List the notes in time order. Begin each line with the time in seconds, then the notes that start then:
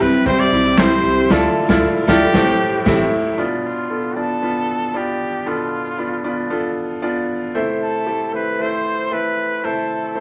Already playing: C2 C3 G3 C4 E4 G4 C5
0.00 C4 E4 G4 B4, floor tom, hi-hat pedal, open hi-hat
0.25 G3 C4 E4 G4 C5, kick, hi-hat pedal, open hi-hat
0.40 D5
0.51 B1 C4 E4 G4, hi-hat pedal, open hi-hat
0.78 C2 C3 G3 C4 E4 G4 C5, kick, snare, clap, hi-hat pedal, open hi-hat
1.03 C2, hi-hat pedal, open hi-hat
1.30 D2 D3 F3 A3 D4 E4 F4 A4 D5, kick, snare, crash
1.69 D2 A3 D4 E4 F4 A4 D5, kick, snare
2.07 D2 A3 D4 E4 F4 G4 A4 D5, kick, snare
2.33 A1 A2 G3 A3 C4 E4 G4 A4 C5, kick, snare
2.85 A1 A2 E3 G3 A3 C4 E4 G4 A4, kick, snare, crash
3.38 B2 B3 D4 F4 D5
3.65 F4
3.90 B3 D4 F4 A4
4.16 B3 D4 F4 A4 D5
4.42 B3 D4 F4 B4
4.94 B3 D4 F4 G4 D5
5.46 B2 B3 D4 F4 A4
5.98 B3 D4 F4 D5
6.24 B3 D4 F4 D5
6.50 B3 D4 F4 A4
7.02 B3 D4 F4 D5
7.55 C3 A3 C4 E4 C5
7.83 A4
8.06 A3 C4 E4 G4
8.33 A3 C4 E4 B4 C5
8.59 A3 C4 E4 B4 C5
8.65 C5
9.11 A3 C4 E4 A4 B4
9.64 C3 A3 C4 E4 A4 C5
10.15 A3 C4 E4 C5